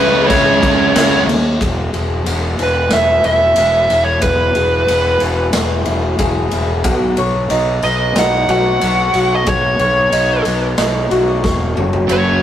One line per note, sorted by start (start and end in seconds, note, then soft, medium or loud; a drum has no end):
0.00 0.27 C#2 medium
0.00 1.25 C#3 medium
0.00 1.27 C#3 medium
0.00 1.26 G#3 medium
0.00 1.25 C#4 medium
0.00 1.27 C#4 medium
0.00 1.26 E4 medium
0.00 0.30 B4 medium
0.27 0.60 C#2 medium
0.27 1.22 C#5 medium
0.27 kick loud
0.27 crash medium
0.63 0.93 C#2 medium
0.63 kick medium
0.63 crash medium
0.95 1.25 C#2 medium
0.95 snare loud
0.95 crash medium
1.27 1.58 D#2 medium
1.27 crash medium
1.60 1.92 E1 medium
1.60 3.24 E2 medium
1.60 kick loud
1.60 ride medium
1.93 2.25 E1 medium
1.93 3.55 G#4 medium
1.93 ride medium
2.25 2.57 E1 medium
2.25 2.91 B3 medium
2.25 ride medium
2.58 2.90 E1 medium
2.58 4.23 E3 medium
2.58 ride medium
2.63 2.92 B4 medium
2.90 3.23 E1 medium
2.90 4.88 B3 medium
2.90 3.23 E5 medium
2.90 snare medium
2.90 ride medium
3.23 3.55 E1 medium
3.23 3.89 E4 medium
3.23 4.09 E5 loud
3.23 ride medium
3.56 3.88 E1 medium
3.56 4.55 G#4 medium
3.56 ride medium
3.90 4.21 E1 medium
3.90 5.54 E4 medium
3.90 ride medium
4.04 4.21 C#5 medium
4.21 4.54 E1 medium
4.21 5.86 E2 medium
4.21 5.20 B4 medium
4.21 kick loud
4.21 ride medium
4.55 4.87 E1 medium
4.55 6.18 G#4 medium
4.55 ride medium
4.88 5.20 E1 medium
4.88 5.54 B3 medium
4.88 ride medium
5.20 5.52 E1 medium
5.20 6.84 E3 medium
5.20 ride medium
5.53 5.85 E1 medium
5.53 6.84 B3 medium
5.53 snare loud
5.53 ride medium
5.86 6.18 E1 medium
5.86 6.51 E4 medium
5.86 ride medium
6.19 6.51 E1 medium
6.19 6.85 G#4 medium
6.19 kick medium
6.19 ride medium
6.51 6.85 E1 medium
6.51 6.85 E4 medium
6.51 ride medium
6.84 7.16 B1 medium
6.84 7.82 B3 medium
6.84 kick loud
6.84 ride loud
7.17 7.49 B1 medium
7.17 8.82 C#5 medium
7.17 ride medium
7.50 7.82 B1 medium
7.50 8.16 D#4 medium
7.50 ride medium
7.82 8.15 B1 medium
7.82 9.46 B3 medium
7.82 8.17 D#5 medium
7.82 ride medium
8.16 8.48 B1 medium
8.16 9.80 D#4 medium
8.16 8.49 F#5 loud
8.16 snare loud
8.16 ride medium
8.48 8.80 B1 medium
8.48 9.14 F#4 medium
8.48 9.34 F#5 loud
8.48 ride medium
8.81 9.13 B1 medium
8.81 9.79 C#5 medium
8.81 ride medium
9.14 9.46 B1 medium
9.14 11.10 F#4 medium
9.14 ride medium
9.35 9.48 D#5 medium
9.46 9.78 B1 medium
9.46 10.44 B3 medium
9.46 10.42 C#5 medium
9.46 kick loud
9.46 ride medium
9.78 10.11 B1 medium
9.78 11.43 C#5 medium
9.78 ride medium
10.12 10.44 B1 medium
10.12 10.77 D#4 medium
10.12 ride medium
10.45 10.77 B1 medium
10.45 11.76 B3 medium
10.45 ride medium
10.78 11.10 B1 medium
10.78 11.76 D#4 medium
10.78 snare loud
10.78 ride medium
11.10 11.43 B1 medium
11.10 12.43 F#4 medium
11.10 ride medium
11.44 11.76 E1 medium
11.44 12.42 C#5 medium
11.44 kick medium
11.44 snare medium
11.77 12.08 F#1 medium
11.77 12.09 F#3 medium
11.77 mid tom medium
11.93 floor tom medium
12.07 12.41 F#1 medium
12.07 12.43 F#2 medium
12.07 12.43 C#3 loud
12.07 12.43 F#3 loud
12.07 12.43 F#3 medium
12.07 ride medium
12.12 12.43 C#5 medium